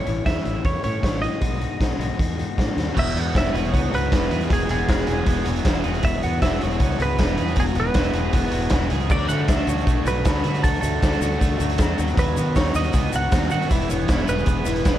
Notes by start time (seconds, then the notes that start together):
Already playing: C#5
0.05 A1 A2 E3 A3 C#4 E4, closed hi-hat
0.23 E2 A2 E3 A3 C#4 E4 E5, kick, closed hi-hat
0.27 snare
0.43 A1 A2 E3 A3 C#4 E4, closed hi-hat
0.62 E2 A2 E3 A3 C#4 E4 C#5, kick, closed hi-hat
0.81 A2 E3 A3 C#4 E4 C#5, closed hi-hat
1.00 A1 A2 E3 A3 C#4 E4, kick, closed hi-hat
1.04 snare
1.20 A2 E3 A3 C#4 E4 D#5, closed hi-hat
1.39 B1 B2 D#3 G#3 D#4 F#4, kick, closed hi-hat
1.58 B2 D#3 G#3 D#4 F#4, closed hi-hat
1.78 B1 B2 D#3 G#3 D#4 F#4, kick, snare, closed hi-hat
1.97 B1 B2 D#3 G#3 D#4 F#4, closed hi-hat
2.18 E2 B2 D#3 G#3 D#4 F#4, kick, closed hi-hat
2.37 B2 D#3 G#3 D#4 F#4, closed hi-hat
2.56 A2 B2 D#3 G#3 D#4 F#4, kick, snare, closed hi-hat
2.77 D#2 B2 D#3 G#3 D#4 F#4, snare, closed hi-hat
2.94 E1 E2 B2 E3 F#3 G#3 B3 F#4, kick, crash
2.99 E5
3.07 closed hi-hat
3.14 E2 E3 G#3 B3 F#4, closed hi-hat
3.19 F#5
3.33 E1 E3 G#3 B3 E4 F#4, kick, snare, closed hi-hat
3.38 E5
3.46 closed hi-hat
3.53 E1 G#4 C#5, closed hi-hat
3.65 closed hi-hat
3.72 C#2 B3, kick, closed hi-hat
3.91 C#2 E3 F#3 G#3 B3 F#4, closed hi-hat
3.95 B4
4.09 E1 E2 B2 E3 G#3 B3 E4 F#4, kick, snare, closed hi-hat
4.22 closed hi-hat
4.29 E2 E3 G#3 B3 F#4 G#4, closed hi-hat
4.41 closed hi-hat
4.47 E1 E2 B2 E3 F#3 G#3 B3 F#4, kick, closed hi-hat
4.53 G#4
4.60 closed hi-hat
4.66 E3 G#3 B3 F#4, closed hi-hat
4.70 E1 G#4
4.87 E1 E3 G#3 B3 E4 F#4, kick, snare, closed hi-hat
4.97 closed hi-hat
5.07 E1 G#4, closed hi-hat
5.26 E1 B3, kick, closed hi-hat
5.37 snare
5.44 E1 E3 F#3 G#3 B3 F#4, closed hi-hat
5.56 closed hi-hat
5.65 E1 E2 B2 E3 G#3 B3 E4 F#4, kick, snare, closed hi-hat
5.83 E1 E3 G#3 B3 F#4 G#4, closed hi-hat
5.94 closed hi-hat
6.03 E1 E2 B2 E3 F#3 G#3 B3 F#4 E5, kick, closed hi-hat
6.14 closed hi-hat
6.23 E2 E3 G#3 B3 F#4 F#5, closed hi-hat
6.40 E1 E3 G#3 B3 E4 F#4 E5, kick, snare, closed hi-hat
6.60 E1 G#4 C#5, closed hi-hat
6.71 closed hi-hat
6.80 C#2 B3, kick, closed hi-hat
6.90 snare
6.98 C#2 E3 F#3 G#3 B3 F#4, closed hi-hat
7.02 B4
7.17 E1 E2 B2 E3 G#3 B3 E4 F#4, kick, snare, closed hi-hat
7.28 closed hi-hat
7.36 E2 E3 G#3 B3 F#4 G#4, closed hi-hat
7.48 closed hi-hat
7.55 E1 E2 B2 E3 F#3 G#3 B3 F#4, kick, closed hi-hat
7.60 G#4
7.66 closed hi-hat
7.75 E1 E3 G#3 B3 F#4, closed hi-hat
7.80 B4
7.94 E1 E3 G#3 B3 E4 F#4, kick, snare, closed hi-hat
8.04 closed hi-hat
8.13 E1 G#4, closed hi-hat
8.33 E1 B3, kick, closed hi-hat
8.43 snare
8.51 E1 E3 F#3 G#3 B3 F#4, closed hi-hat
8.62 closed hi-hat
8.70 E1 E2 B2 E3 G#3 B3 E4 F#4, kick, snare, closed hi-hat
8.90 C#2 E3 G#3 B3 F#4 G#4, closed hi-hat
9.00 closed hi-hat
9.09 D2 D3 F#3 A3 D4 F#4 D5, kick, crash, shaker
9.19 closed hi-hat
9.28 D3 A3 D4 F#4 F#5, closed hi-hat, shaker
9.47 D2 D3 A3 D4 F#4 E5, kick, snare, closed hi-hat, shaker
9.58 closed hi-hat
9.67 D2 F#4 C#5, closed hi-hat, shaker
9.78 closed hi-hat, shaker
9.85 B1 A3, kick, closed hi-hat, shaker
10.05 B1 F#3 A3 D4 F#4 B4, closed hi-hat, shaker
10.23 D2 D3 A3 D4, kick, snare, closed hi-hat, shaker
10.27 F#4
10.35 closed hi-hat
10.43 D3 A3 D4 F#4, closed hi-hat
10.55 closed hi-hat, shaker
10.63 D2 D3 F#3 A3 D4 F#4 A4, kick, closed hi-hat, shaker
10.74 closed hi-hat
10.81 D2 A3 D4 F#4 A4, closed hi-hat, shaker
11.01 D2 D3 A3 D4 F#4, kick, snare, closed hi-hat, shaker
11.13 closed hi-hat
11.21 D2 F#4, closed hi-hat, shaker
11.33 shaker
11.40 D2 A3, kick, closed hi-hat, shaker
11.59 D2 F#3 A3 D4 F#4, closed hi-hat, shaker
11.70 closed hi-hat
11.78 E2 D3 A3 D4 F#4, kick, snare, closed hi-hat, shaker
11.97 D#2 D#3 F#3 B3 D#4 F#4, closed hi-hat, shaker
12.07 closed hi-hat, shaker
12.17 D#2 D#3 F#3 B3 D#4 F#4 B4, kick, closed hi-hat, shaker
12.27 closed hi-hat
12.36 D#3 B3 D#4 F#4, closed hi-hat, shaker
12.55 D#2 D#3 B3 D#4 F#4 C#5, kick, snare, closed hi-hat, shaker
12.75 D#2 F#4 D#5, closed hi-hat, shaker
12.83 closed hi-hat, shaker
12.93 C#2 B3, kick, closed hi-hat, shaker
13.12 C#2 F#3 B3 D#4 F#4 F#5, closed hi-hat, shaker
13.31 D#2 D#3 B3 D#4 F#4, kick, snare, closed hi-hat, shaker
13.43 closed hi-hat
13.50 D#3 B3 D#4 F#4 F#5, closed hi-hat, shaker
13.62 closed hi-hat, shaker
13.68 E1 E2 B2 E3 G#3 B3 E4 E5, kick, closed hi-hat, shaker
13.81 closed hi-hat
13.88 E1 E3 G#3 B3 E4 C#5, closed hi-hat, shaker
14.01 shaker
14.07 E1 E3 G#3 B3 E4, kick, snare, closed hi-hat, shaker
14.18 closed hi-hat
14.27 E1 G#4 B4, closed hi-hat, shaker
14.39 shaker
14.46 E1 B3, kick, closed hi-hat, shaker
14.65 E1 E3 G#3 B3 E4, closed hi-hat, shaker
14.76 closed hi-hat
14.83 E1 E2 B2 E3 G#3 B3 E4, kick, snare, closed hi-hat, shaker